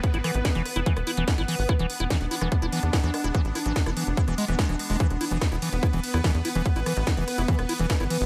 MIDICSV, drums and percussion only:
0, 0, Header, 1, 2, 480
1, 0, Start_track
1, 0, Tempo, 413793
1, 41, Time_signature, 4, 2, 24, 8
1, 9580, End_track
2, 0, Start_track
2, 0, Title_t, "Drums"
2, 41, Note_on_c, 9, 36, 127
2, 41, Note_on_c, 9, 42, 83
2, 157, Note_off_c, 9, 36, 0
2, 157, Note_off_c, 9, 42, 0
2, 161, Note_on_c, 9, 42, 54
2, 277, Note_off_c, 9, 42, 0
2, 281, Note_on_c, 9, 37, 74
2, 281, Note_on_c, 9, 46, 111
2, 397, Note_off_c, 9, 37, 0
2, 397, Note_off_c, 9, 46, 0
2, 401, Note_on_c, 9, 42, 55
2, 517, Note_off_c, 9, 42, 0
2, 521, Note_on_c, 9, 36, 123
2, 521, Note_on_c, 9, 38, 127
2, 521, Note_on_c, 9, 42, 83
2, 637, Note_off_c, 9, 36, 0
2, 637, Note_off_c, 9, 38, 0
2, 637, Note_off_c, 9, 42, 0
2, 640, Note_on_c, 9, 42, 54
2, 756, Note_off_c, 9, 42, 0
2, 760, Note_on_c, 9, 37, 43
2, 760, Note_on_c, 9, 46, 118
2, 876, Note_off_c, 9, 37, 0
2, 876, Note_off_c, 9, 46, 0
2, 880, Note_on_c, 9, 42, 54
2, 996, Note_off_c, 9, 42, 0
2, 1001, Note_on_c, 9, 36, 123
2, 1001, Note_on_c, 9, 42, 80
2, 1117, Note_off_c, 9, 36, 0
2, 1117, Note_off_c, 9, 42, 0
2, 1120, Note_on_c, 9, 37, 76
2, 1120, Note_on_c, 9, 42, 52
2, 1236, Note_off_c, 9, 37, 0
2, 1236, Note_off_c, 9, 42, 0
2, 1240, Note_on_c, 9, 46, 112
2, 1356, Note_off_c, 9, 46, 0
2, 1360, Note_on_c, 9, 42, 55
2, 1476, Note_off_c, 9, 42, 0
2, 1480, Note_on_c, 9, 38, 127
2, 1480, Note_on_c, 9, 42, 83
2, 1481, Note_on_c, 9, 36, 127
2, 1596, Note_off_c, 9, 38, 0
2, 1596, Note_off_c, 9, 42, 0
2, 1597, Note_off_c, 9, 36, 0
2, 1601, Note_on_c, 9, 37, 39
2, 1601, Note_on_c, 9, 42, 57
2, 1717, Note_off_c, 9, 37, 0
2, 1717, Note_off_c, 9, 42, 0
2, 1720, Note_on_c, 9, 46, 114
2, 1836, Note_off_c, 9, 46, 0
2, 1840, Note_on_c, 9, 46, 65
2, 1956, Note_off_c, 9, 46, 0
2, 1960, Note_on_c, 9, 37, 77
2, 1960, Note_on_c, 9, 42, 81
2, 1961, Note_on_c, 9, 36, 126
2, 2076, Note_off_c, 9, 37, 0
2, 2076, Note_off_c, 9, 42, 0
2, 2077, Note_off_c, 9, 36, 0
2, 2080, Note_on_c, 9, 42, 53
2, 2196, Note_off_c, 9, 42, 0
2, 2200, Note_on_c, 9, 46, 109
2, 2316, Note_off_c, 9, 46, 0
2, 2321, Note_on_c, 9, 42, 55
2, 2437, Note_off_c, 9, 42, 0
2, 2441, Note_on_c, 9, 36, 127
2, 2441, Note_on_c, 9, 37, 40
2, 2441, Note_on_c, 9, 38, 125
2, 2441, Note_on_c, 9, 42, 80
2, 2557, Note_off_c, 9, 36, 0
2, 2557, Note_off_c, 9, 37, 0
2, 2557, Note_off_c, 9, 38, 0
2, 2557, Note_off_c, 9, 42, 0
2, 2561, Note_on_c, 9, 42, 50
2, 2677, Note_off_c, 9, 42, 0
2, 2681, Note_on_c, 9, 46, 118
2, 2797, Note_off_c, 9, 46, 0
2, 2801, Note_on_c, 9, 37, 80
2, 2801, Note_on_c, 9, 42, 52
2, 2917, Note_off_c, 9, 37, 0
2, 2917, Note_off_c, 9, 42, 0
2, 2921, Note_on_c, 9, 36, 127
2, 2921, Note_on_c, 9, 42, 77
2, 3037, Note_off_c, 9, 36, 0
2, 3037, Note_off_c, 9, 42, 0
2, 3041, Note_on_c, 9, 42, 51
2, 3157, Note_off_c, 9, 42, 0
2, 3161, Note_on_c, 9, 46, 116
2, 3277, Note_off_c, 9, 46, 0
2, 3281, Note_on_c, 9, 37, 39
2, 3281, Note_on_c, 9, 42, 53
2, 3397, Note_off_c, 9, 37, 0
2, 3397, Note_off_c, 9, 42, 0
2, 3401, Note_on_c, 9, 36, 127
2, 3401, Note_on_c, 9, 38, 127
2, 3401, Note_on_c, 9, 46, 70
2, 3517, Note_off_c, 9, 36, 0
2, 3517, Note_off_c, 9, 38, 0
2, 3517, Note_off_c, 9, 46, 0
2, 3521, Note_on_c, 9, 42, 55
2, 3637, Note_off_c, 9, 42, 0
2, 3641, Note_on_c, 9, 37, 83
2, 3641, Note_on_c, 9, 46, 122
2, 3757, Note_off_c, 9, 37, 0
2, 3757, Note_off_c, 9, 46, 0
2, 3761, Note_on_c, 9, 42, 53
2, 3877, Note_off_c, 9, 42, 0
2, 3881, Note_on_c, 9, 36, 127
2, 3881, Note_on_c, 9, 42, 75
2, 3997, Note_off_c, 9, 36, 0
2, 3997, Note_off_c, 9, 42, 0
2, 4001, Note_on_c, 9, 42, 49
2, 4117, Note_off_c, 9, 42, 0
2, 4121, Note_on_c, 9, 37, 41
2, 4121, Note_on_c, 9, 46, 110
2, 4237, Note_off_c, 9, 37, 0
2, 4237, Note_off_c, 9, 46, 0
2, 4241, Note_on_c, 9, 42, 53
2, 4357, Note_off_c, 9, 42, 0
2, 4361, Note_on_c, 9, 36, 127
2, 4361, Note_on_c, 9, 38, 121
2, 4361, Note_on_c, 9, 42, 81
2, 4477, Note_off_c, 9, 36, 0
2, 4477, Note_off_c, 9, 38, 0
2, 4477, Note_off_c, 9, 42, 0
2, 4481, Note_on_c, 9, 37, 81
2, 4481, Note_on_c, 9, 42, 52
2, 4597, Note_off_c, 9, 37, 0
2, 4597, Note_off_c, 9, 42, 0
2, 4601, Note_on_c, 9, 46, 117
2, 4717, Note_off_c, 9, 46, 0
2, 4721, Note_on_c, 9, 42, 51
2, 4837, Note_off_c, 9, 42, 0
2, 4841, Note_on_c, 9, 36, 127
2, 4841, Note_on_c, 9, 42, 74
2, 4957, Note_off_c, 9, 36, 0
2, 4957, Note_off_c, 9, 42, 0
2, 4961, Note_on_c, 9, 37, 42
2, 4961, Note_on_c, 9, 42, 51
2, 5077, Note_off_c, 9, 37, 0
2, 5077, Note_off_c, 9, 42, 0
2, 5081, Note_on_c, 9, 46, 116
2, 5197, Note_off_c, 9, 46, 0
2, 5201, Note_on_c, 9, 42, 52
2, 5317, Note_off_c, 9, 42, 0
2, 5321, Note_on_c, 9, 36, 127
2, 5321, Note_on_c, 9, 37, 86
2, 5321, Note_on_c, 9, 38, 124
2, 5321, Note_on_c, 9, 42, 80
2, 5437, Note_off_c, 9, 36, 0
2, 5437, Note_off_c, 9, 37, 0
2, 5437, Note_off_c, 9, 38, 0
2, 5437, Note_off_c, 9, 42, 0
2, 5441, Note_on_c, 9, 42, 53
2, 5557, Note_off_c, 9, 42, 0
2, 5561, Note_on_c, 9, 46, 116
2, 5677, Note_off_c, 9, 46, 0
2, 5681, Note_on_c, 9, 46, 63
2, 5797, Note_off_c, 9, 46, 0
2, 5801, Note_on_c, 9, 36, 124
2, 5801, Note_on_c, 9, 42, 78
2, 5917, Note_off_c, 9, 36, 0
2, 5917, Note_off_c, 9, 42, 0
2, 5921, Note_on_c, 9, 37, 41
2, 5921, Note_on_c, 9, 42, 53
2, 6037, Note_off_c, 9, 37, 0
2, 6037, Note_off_c, 9, 42, 0
2, 6041, Note_on_c, 9, 46, 105
2, 6041, Note_on_c, 9, 51, 80
2, 6157, Note_off_c, 9, 46, 0
2, 6157, Note_off_c, 9, 51, 0
2, 6161, Note_on_c, 9, 42, 50
2, 6277, Note_off_c, 9, 42, 0
2, 6281, Note_on_c, 9, 36, 127
2, 6281, Note_on_c, 9, 37, 87
2, 6281, Note_on_c, 9, 38, 121
2, 6281, Note_on_c, 9, 42, 81
2, 6397, Note_off_c, 9, 36, 0
2, 6397, Note_off_c, 9, 37, 0
2, 6397, Note_off_c, 9, 38, 0
2, 6397, Note_off_c, 9, 42, 0
2, 6401, Note_on_c, 9, 42, 52
2, 6517, Note_off_c, 9, 42, 0
2, 6521, Note_on_c, 9, 46, 113
2, 6521, Note_on_c, 9, 51, 85
2, 6637, Note_off_c, 9, 46, 0
2, 6637, Note_off_c, 9, 51, 0
2, 6641, Note_on_c, 9, 42, 50
2, 6757, Note_off_c, 9, 42, 0
2, 6761, Note_on_c, 9, 36, 121
2, 6761, Note_on_c, 9, 37, 41
2, 6761, Note_on_c, 9, 42, 75
2, 6877, Note_off_c, 9, 36, 0
2, 6877, Note_off_c, 9, 37, 0
2, 6877, Note_off_c, 9, 42, 0
2, 6881, Note_on_c, 9, 42, 52
2, 6997, Note_off_c, 9, 42, 0
2, 7001, Note_on_c, 9, 46, 113
2, 7001, Note_on_c, 9, 51, 84
2, 7117, Note_off_c, 9, 46, 0
2, 7117, Note_off_c, 9, 51, 0
2, 7121, Note_on_c, 9, 37, 82
2, 7121, Note_on_c, 9, 42, 52
2, 7237, Note_off_c, 9, 37, 0
2, 7237, Note_off_c, 9, 42, 0
2, 7241, Note_on_c, 9, 36, 124
2, 7241, Note_on_c, 9, 38, 118
2, 7241, Note_on_c, 9, 46, 64
2, 7357, Note_off_c, 9, 36, 0
2, 7357, Note_off_c, 9, 38, 0
2, 7357, Note_off_c, 9, 46, 0
2, 7361, Note_on_c, 9, 42, 54
2, 7477, Note_off_c, 9, 42, 0
2, 7481, Note_on_c, 9, 46, 116
2, 7481, Note_on_c, 9, 51, 86
2, 7597, Note_off_c, 9, 46, 0
2, 7597, Note_off_c, 9, 51, 0
2, 7601, Note_on_c, 9, 37, 41
2, 7601, Note_on_c, 9, 42, 52
2, 7717, Note_off_c, 9, 37, 0
2, 7717, Note_off_c, 9, 42, 0
2, 7721, Note_on_c, 9, 36, 120
2, 7721, Note_on_c, 9, 42, 85
2, 7837, Note_off_c, 9, 36, 0
2, 7837, Note_off_c, 9, 42, 0
2, 7841, Note_on_c, 9, 42, 53
2, 7957, Note_off_c, 9, 42, 0
2, 7961, Note_on_c, 9, 37, 82
2, 7961, Note_on_c, 9, 46, 101
2, 7961, Note_on_c, 9, 51, 78
2, 8077, Note_off_c, 9, 37, 0
2, 8077, Note_off_c, 9, 46, 0
2, 8077, Note_off_c, 9, 51, 0
2, 8081, Note_on_c, 9, 42, 55
2, 8197, Note_off_c, 9, 42, 0
2, 8201, Note_on_c, 9, 36, 115
2, 8201, Note_on_c, 9, 38, 116
2, 8201, Note_on_c, 9, 42, 83
2, 8317, Note_off_c, 9, 36, 0
2, 8317, Note_off_c, 9, 38, 0
2, 8317, Note_off_c, 9, 42, 0
2, 8321, Note_on_c, 9, 42, 53
2, 8437, Note_off_c, 9, 42, 0
2, 8441, Note_on_c, 9, 37, 46
2, 8441, Note_on_c, 9, 46, 110
2, 8441, Note_on_c, 9, 51, 86
2, 8557, Note_off_c, 9, 37, 0
2, 8557, Note_off_c, 9, 46, 0
2, 8557, Note_off_c, 9, 51, 0
2, 8561, Note_on_c, 9, 42, 52
2, 8677, Note_off_c, 9, 42, 0
2, 8681, Note_on_c, 9, 36, 118
2, 8681, Note_on_c, 9, 42, 78
2, 8797, Note_off_c, 9, 36, 0
2, 8797, Note_off_c, 9, 42, 0
2, 8801, Note_on_c, 9, 37, 83
2, 8801, Note_on_c, 9, 42, 52
2, 8917, Note_off_c, 9, 37, 0
2, 8917, Note_off_c, 9, 42, 0
2, 8921, Note_on_c, 9, 46, 107
2, 8921, Note_on_c, 9, 51, 87
2, 9037, Note_off_c, 9, 46, 0
2, 9037, Note_off_c, 9, 51, 0
2, 9041, Note_on_c, 9, 42, 53
2, 9157, Note_off_c, 9, 42, 0
2, 9161, Note_on_c, 9, 36, 117
2, 9161, Note_on_c, 9, 38, 122
2, 9161, Note_on_c, 9, 42, 86
2, 9277, Note_off_c, 9, 36, 0
2, 9277, Note_off_c, 9, 38, 0
2, 9277, Note_off_c, 9, 42, 0
2, 9282, Note_on_c, 9, 37, 42
2, 9282, Note_on_c, 9, 42, 54
2, 9398, Note_off_c, 9, 37, 0
2, 9398, Note_off_c, 9, 42, 0
2, 9401, Note_on_c, 9, 46, 110
2, 9401, Note_on_c, 9, 51, 88
2, 9517, Note_off_c, 9, 46, 0
2, 9517, Note_off_c, 9, 51, 0
2, 9521, Note_on_c, 9, 46, 58
2, 9580, Note_off_c, 9, 46, 0
2, 9580, End_track
0, 0, End_of_file